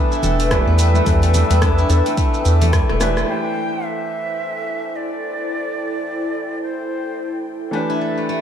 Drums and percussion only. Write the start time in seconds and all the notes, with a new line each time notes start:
0.12 shaker
0.23 open hi-hat, low conga, shaker
0.40 open hi-hat, shaker
0.51 kick, cross-stick, open hi-hat, shaker
0.79 open hi-hat, shaker
0.94 high conga, shaker
1.06 kick, open hi-hat, high conga, shaker
1.22 open hi-hat, muted conga, shaker
1.34 open hi-hat, low conga, shaker
1.50 open hi-hat, muted conga, high conga, shaker
1.62 kick, cross-stick, open hi-hat, shaker
1.78 high conga, shaker
1.90 open hi-hat, muted conga, high conga, shaker
2.06 open hi-hat, shaker
2.17 kick, open hi-hat, shaker
2.34 shaker
2.45 open hi-hat, shaker
2.62 open hi-hat, low conga, shaker
2.73 kick, cross-stick, open hi-hat, shaker
2.89 cross-stick
3.01 cross-stick, open hi-hat, shaker
3.17 cross-stick, shaker